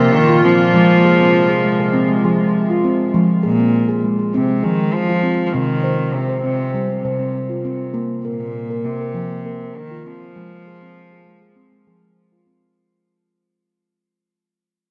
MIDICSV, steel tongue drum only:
0, 0, Header, 1, 2, 480
1, 0, Start_track
1, 0, Key_signature, -4, "minor"
1, 0, Tempo, 601202
1, 596, Time_signature, 4, 2, 24, 8
1, 11903, End_track
2, 0, Start_track
2, 0, Title_t, "Steel tongue drum"
2, 0, Program_c, 0, 114
2, 0, Note_on_c, 0, 58, 63
2, 230, Note_on_c, 0, 65, 68
2, 238, Note_off_c, 0, 58, 0
2, 351, Note_on_c, 0, 60, 68
2, 353, Note_off_c, 0, 65, 0
2, 589, Note_on_c, 0, 53, 82
2, 593, Note_off_c, 0, 60, 0
2, 598, Note_on_c, 0, 56, 82
2, 836, Note_off_c, 0, 56, 0
2, 836, Note_on_c, 0, 68, 62
2, 957, Note_off_c, 0, 68, 0
2, 958, Note_on_c, 0, 60, 62
2, 1195, Note_on_c, 0, 68, 60
2, 1196, Note_off_c, 0, 60, 0
2, 1313, Note_off_c, 0, 68, 0
2, 1317, Note_on_c, 0, 56, 63
2, 1437, Note_off_c, 0, 56, 0
2, 1437, Note_on_c, 0, 68, 64
2, 1517, Note_off_c, 0, 53, 0
2, 1545, Note_on_c, 0, 60, 84
2, 1675, Note_off_c, 0, 68, 0
2, 1678, Note_on_c, 0, 56, 55
2, 1772, Note_off_c, 0, 60, 0
2, 1790, Note_on_c, 0, 53, 73
2, 1793, Note_off_c, 0, 56, 0
2, 1794, Note_on_c, 0, 68, 64
2, 1915, Note_off_c, 0, 68, 0
2, 1923, Note_on_c, 0, 56, 58
2, 2156, Note_on_c, 0, 65, 56
2, 2157, Note_off_c, 0, 56, 0
2, 2270, Note_on_c, 0, 60, 67
2, 2272, Note_off_c, 0, 65, 0
2, 2476, Note_off_c, 0, 53, 0
2, 2508, Note_on_c, 0, 53, 83
2, 2508, Note_on_c, 0, 56, 67
2, 2509, Note_off_c, 0, 60, 0
2, 2741, Note_on_c, 0, 68, 57
2, 2748, Note_off_c, 0, 56, 0
2, 2867, Note_off_c, 0, 68, 0
2, 2868, Note_on_c, 0, 60, 55
2, 3105, Note_on_c, 0, 68, 62
2, 3109, Note_off_c, 0, 60, 0
2, 3225, Note_off_c, 0, 68, 0
2, 3226, Note_on_c, 0, 56, 61
2, 3344, Note_on_c, 0, 68, 53
2, 3348, Note_off_c, 0, 56, 0
2, 3434, Note_off_c, 0, 53, 0
2, 3467, Note_on_c, 0, 60, 85
2, 3586, Note_off_c, 0, 68, 0
2, 3588, Note_on_c, 0, 56, 54
2, 3692, Note_off_c, 0, 60, 0
2, 3699, Note_on_c, 0, 68, 67
2, 3706, Note_off_c, 0, 56, 0
2, 3710, Note_on_c, 0, 53, 67
2, 3823, Note_on_c, 0, 56, 60
2, 3825, Note_off_c, 0, 68, 0
2, 4064, Note_on_c, 0, 65, 62
2, 4066, Note_off_c, 0, 56, 0
2, 4178, Note_on_c, 0, 60, 69
2, 4184, Note_off_c, 0, 65, 0
2, 4396, Note_off_c, 0, 53, 0
2, 4412, Note_off_c, 0, 60, 0
2, 4422, Note_on_c, 0, 60, 77
2, 4427, Note_on_c, 0, 48, 81
2, 4661, Note_on_c, 0, 72, 59
2, 4664, Note_off_c, 0, 60, 0
2, 4780, Note_on_c, 0, 60, 58
2, 4785, Note_off_c, 0, 72, 0
2, 5023, Note_on_c, 0, 72, 57
2, 5024, Note_off_c, 0, 60, 0
2, 5142, Note_on_c, 0, 60, 59
2, 5143, Note_off_c, 0, 72, 0
2, 5266, Note_off_c, 0, 60, 0
2, 5266, Note_on_c, 0, 72, 50
2, 5354, Note_off_c, 0, 48, 0
2, 5383, Note_on_c, 0, 55, 78
2, 5507, Note_off_c, 0, 72, 0
2, 5511, Note_on_c, 0, 60, 51
2, 5609, Note_off_c, 0, 55, 0
2, 5627, Note_off_c, 0, 60, 0
2, 5627, Note_on_c, 0, 72, 58
2, 5629, Note_on_c, 0, 48, 70
2, 5745, Note_on_c, 0, 60, 54
2, 5748, Note_off_c, 0, 72, 0
2, 5985, Note_on_c, 0, 65, 53
2, 5986, Note_off_c, 0, 60, 0
2, 6104, Note_off_c, 0, 65, 0
2, 6107, Note_on_c, 0, 60, 69
2, 6316, Note_off_c, 0, 48, 0
2, 6337, Note_on_c, 0, 58, 80
2, 6347, Note_off_c, 0, 60, 0
2, 6586, Note_on_c, 0, 70, 56
2, 6695, Note_off_c, 0, 58, 0
2, 6705, Note_on_c, 0, 58, 53
2, 6708, Note_off_c, 0, 70, 0
2, 6947, Note_off_c, 0, 58, 0
2, 6949, Note_on_c, 0, 70, 60
2, 7067, Note_off_c, 0, 70, 0
2, 7067, Note_on_c, 0, 58, 59
2, 7189, Note_off_c, 0, 58, 0
2, 7191, Note_on_c, 0, 70, 53
2, 7301, Note_on_c, 0, 53, 80
2, 7431, Note_off_c, 0, 70, 0
2, 7432, Note_on_c, 0, 58, 46
2, 7529, Note_off_c, 0, 53, 0
2, 7537, Note_off_c, 0, 58, 0
2, 7547, Note_on_c, 0, 58, 65
2, 7553, Note_on_c, 0, 70, 58
2, 7663, Note_off_c, 0, 58, 0
2, 7672, Note_off_c, 0, 70, 0
2, 7672, Note_on_c, 0, 58, 50
2, 7912, Note_off_c, 0, 58, 0
2, 7912, Note_on_c, 0, 65, 54
2, 8029, Note_off_c, 0, 65, 0
2, 8037, Note_on_c, 0, 60, 66
2, 8267, Note_on_c, 0, 53, 74
2, 8272, Note_on_c, 0, 56, 70
2, 8273, Note_off_c, 0, 60, 0
2, 8511, Note_off_c, 0, 56, 0
2, 8517, Note_on_c, 0, 68, 48
2, 8636, Note_off_c, 0, 68, 0
2, 8641, Note_on_c, 0, 60, 59
2, 8878, Note_off_c, 0, 60, 0
2, 8880, Note_on_c, 0, 68, 56
2, 8995, Note_off_c, 0, 68, 0
2, 8996, Note_on_c, 0, 56, 57
2, 9114, Note_on_c, 0, 68, 54
2, 9116, Note_off_c, 0, 56, 0
2, 9199, Note_off_c, 0, 53, 0
2, 9229, Note_on_c, 0, 60, 77
2, 9355, Note_off_c, 0, 68, 0
2, 9356, Note_on_c, 0, 56, 48
2, 9456, Note_off_c, 0, 60, 0
2, 9474, Note_off_c, 0, 56, 0
2, 9477, Note_on_c, 0, 53, 66
2, 9481, Note_on_c, 0, 68, 53
2, 9599, Note_off_c, 0, 68, 0
2, 9601, Note_on_c, 0, 56, 49
2, 9837, Note_on_c, 0, 65, 54
2, 9839, Note_off_c, 0, 56, 0
2, 9954, Note_on_c, 0, 60, 57
2, 9955, Note_off_c, 0, 65, 0
2, 10166, Note_off_c, 0, 53, 0
2, 10195, Note_off_c, 0, 60, 0
2, 11903, End_track
0, 0, End_of_file